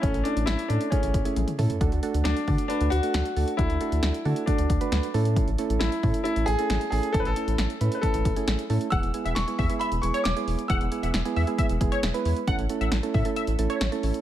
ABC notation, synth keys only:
X:1
M:4/4
L:1/16
Q:1/4=135
K:A
V:1 name="Synth keys"
[A,CEA]2 [A,CEA]3 z [A,CEA]2 [A,CEG]2 z [A,CEG]2 z [A,CEA]2 | [A,DFA]2 [A,DFA]3 z [A,DFA]2 [A,DFB]2 z [A,DFA]2 z [A,DFA]2 | [A,DFA]2 [A,DFA]3 z [A,DFA]2 [A,DFA]2 z [A,DFB]2 z [A,CEA]2- | [A,CEA] z [A,CEA]3 z [A,CEA]2 [A,CEA]2 z [A,CEA]2 z [A,CEA]2 |
[A,CEA]2 [A,CEA]3 z [A,CEB]2 [A,CEB]2 z [A,CEG]2 z [A,CEA]2 | [G,B,EG]2 [G,B,EG]2 z [G,B,EG]2 [G,B,EG]2 z [G,B,EG]2 z [G,B,EG]2 z | [G,B,EG]2 [G,B,EG]2 z [G,B,EG]2 [G,B,EG]2 z [G,B,EG]2 z [G,B,EB]2 z | [A,CEA]2 [A,CEA]2 z [A,CEA]2 [A,CEA]2 z [A,CEA]2 z [A,CEA]2 z |]